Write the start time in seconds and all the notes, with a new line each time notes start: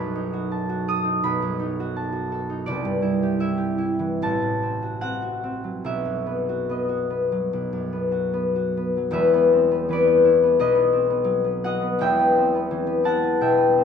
Already playing: B1 F#2 D#4 F#4 B4 F#5 A5 B5
0.15 D#4
0.33 F#4
0.51 A5
0.69 F#4
0.88 A4 D#6
1.05 D#4
1.23 B1 B5
1.42 F#2
1.59 D#4
1.80 F#4
1.96 A5
2.12 F#4
2.32 A4
2.50 D#4
2.66 C2 D5
2.85 G2
3.02 E4
3.23 G4
3.40 E4 E5
3.57 G4
3.78 E4
3.99 E3
4.22 A1 A5
4.42 A2
4.62 C4
4.82 F#4
5.01 C4 F#5
5.22 F#4
5.43 C4
5.64 F#3
5.85 B1 E5
6.05 F#2
6.27 B3
6.49 F#4
6.69 B3 D#5
6.89 F#4
7.10 B3
7.32 F#3
7.53 B1
7.73 F#2
7.93 B3
8.12 F#4
8.34 B3
8.56 F#4
8.77 B3
8.97 F#3
9.11 E1 E2 B4 E5
9.34 B3
9.53 C4
9.71 B3
9.89 E3 B4 D5
10.07 B3
10.24 E4
10.43 B3
10.59 B1 B4 D#5
10.75 B3
10.93 C4
11.10 B3
11.24 F#3
11.44 B3
11.64 F#4 D#5 F#5
11.82 B3
11.99 E1 E2 E5 G5
12.19 B3
12.36 C4
12.55 B3
12.71 E3
12.87 B3
13.04 E4 F#5 A5
13.23 B3
13.41 B2 E5 G5
13.57 B3
13.78 C4